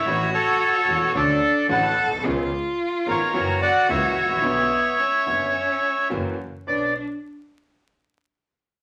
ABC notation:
X:1
M:4/4
L:1/16
Q:1/4=109
K:Bm
V:1 name="Bandoneon"
[ce]2 [Ac]6 [Ad]4 [fa]3 z | z6 [^Ac]4 [df]2 [ce]4- | [ce]12 z4 | d2 z12 z2 |]
V:2 name="Cello"
F8 D4 A4 | ^E8 F8 | B,4 C8- C2 z2 | D2 z12 z2 |]
V:3 name="Grand piano" clef=bass
[A,,,A,,E,A,CF]2 z4 [E,,,E,,E,A,CF]2 [D,,D,A,CF]2 z2 [A,,,A,,D,A,CF]2 z/2 ^A,,,/2 B,,,/2 =C,,/2 | [C,,C,^E,B,C^G]2 z4 [^G,,,^G,,E,B,CG]2 [F,,=E,F,^A,CF]2 z2 [C,,C,E,A,CF]2 z/2 G,,,/2 =A,,,/2 ^A,,,/2 | [B,,,B,,D,B,CF]2 z4 [F,,,F,,D,B,CF]2 z4 [F,,E,F,^A,CF]2 z2 | [B,,,CDB]2 z12 z2 |]
V:4 name="Double bass" clef=bass
A,,,2 z4 E,,,2 D,,2 z2 A,,,2 B,,,2 | C,,2 z4 ^G,,,2 F,,,2 z2 C,,2 A,,,2 | B,,,2 z4 F,,,2 z4 F,,,2 z2 | B,,,2 z12 z2 |]